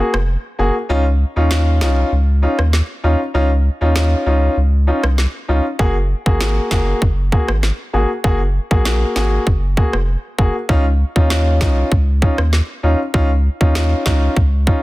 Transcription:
Already playing: A#3 F#4 G#4
0.14 F1, cross-stick
0.59 F#1 A#3 F#4 G#4
0.89 C#2 C#4 D#4 F4
1.36 D#2 C#4 D#4 F4
1.51 snare
1.81 C2 C#4 D#4 F4, snare
2.12 C#2
2.42 C#4 D#4 F4
2.59 D#2, cross-stick
2.73 snare
3.03 D#2 C#4 D#4 F4
3.34 C#2 C#4 D#4 F4
3.81 D#2 C#4 D#4 F4
3.96 snare
4.26 C#2 C#4 D#4 F4
4.57 C#2
4.87 C#4 D#4 F4
5.04 C2, cross-stick
5.18 snare
5.48 C#2 C#4 D#4 F4
5.79 F#1 A#3 F#4 G#4, kick
6.26 G#1 A#3 F#4 G#4, kick
6.41 snare
6.71 F#1 A#3 F#4 G#4, kick, snare
7.02 F#1, kick
7.32 A#3 F#4 G#4, kick
7.48 G#1, cross-stick
7.63 snare
7.93 G#1 A#3 F#4 G#4
8.24 F#1 A#3 F#4 G#4, kick
8.71 A#1 A#3 F#4 G#4, kick
8.85 snare
9.16 G#1 A#3 F#4 G#4, snare
9.47 F#1, kick
9.77 A#3 F#4 G#4, kick
9.93 F1, cross-stick
10.38 F#1 A#3 F#4 G#4, kick
10.69 C#2 C#4 D#4 F4, kick
11.16 D#2 C#4 D#4 F4, kick
11.30 snare
11.61 C2 C#4 D#4 F4, kick, snare
11.92 C#2, kick
12.22 C#4 D#4 F4, kick
12.38 D#2, cross-stick
12.53 snare
12.83 D#2 C#4 D#4 F4
13.14 C#2 C#4 D#4 F4, kick
13.61 D#2 C#4 D#4 F4, kick
13.75 snare
14.06 C#2 C#4 D#4 F4, kick, snare
14.37 C#2, kick
14.67 C#4 D#4 F4, kick

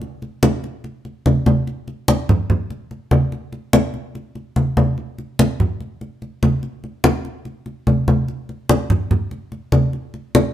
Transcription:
0.02 high conga
0.22 high conga
0.43 high conga
0.64 high conga
0.84 high conga
1.05 high conga
1.26 high conga
1.46 high conga
1.67 high conga
1.88 high conga
2.08 high conga
2.29 high conga, low conga
2.50 high conga, low conga
2.70 high conga
2.91 high conga
3.11 high conga
3.32 high conga
3.53 high conga
3.73 high conga
3.94 high conga
4.15 high conga
4.35 high conga
4.56 high conga
4.77 high conga
4.98 high conga
5.18 high conga
5.39 high conga
5.60 high conga, low conga
5.80 high conga
6.01 high conga
6.22 high conga
6.43 high conga
6.63 high conga
6.84 high conga
7.04 high conga
7.25 high conga
7.45 high conga
7.66 high conga
7.87 high conga
8.08 high conga
8.28 high conga
8.49 high conga
8.69 high conga
8.90 high conga, low conga
9.11 high conga, low conga
9.31 high conga
9.52 high conga
9.72 high conga
9.93 high conga
10.14 high conga
10.35 high conga

